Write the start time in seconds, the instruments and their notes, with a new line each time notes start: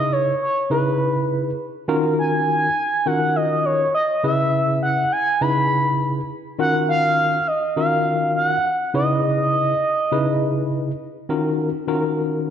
Already playing: tine electric piano C#3 D#4 E4 G#4 B4, analog synth lead D#5
0.12 analog synth lead C#5
0.42 analog synth lead C#5
0.70 tine electric piano C#3 D#4 E4 G#4 B4, analog synth lead B4
1.88 tine electric piano D#3 C#4 F4 F#4 A#4
2.19 analog synth lead G#5
3.06 tine electric piano D#3 C#4 F4 F#4 A#4, analog synth lead F#5
3.36 analog synth lead D#5
3.65 analog synth lead C#5
3.95 analog synth lead D#5
4.24 tine electric piano C#3 C#4 E4 G#4 B4, analog synth lead E5
4.83 analog synth lead F#5
5.12 analog synth lead G#5
5.41 tine electric piano C#3 D#4 E4 G#4 B4, analog synth lead B5
6.59 tine electric piano D#3 C#4 F4 F#4 A#4, analog synth lead F#5
6.89 analog synth lead F5
7.48 analog synth lead D#5
7.76 tine electric piano D#3 C#4 F4 F#4 A#4, analog synth lead F5
8.36 analog synth lead F#5
8.94 tine electric piano C#3 D#4 E4 G#4 B4, analog synth lead D#5
10.12 tine electric piano C#3 D#4 E4 G#4 B4
11.29 tine electric piano D#3 C#4 F4 F#4 A#4
11.88 tine electric piano D#3 C#4 F4 F#4 A#4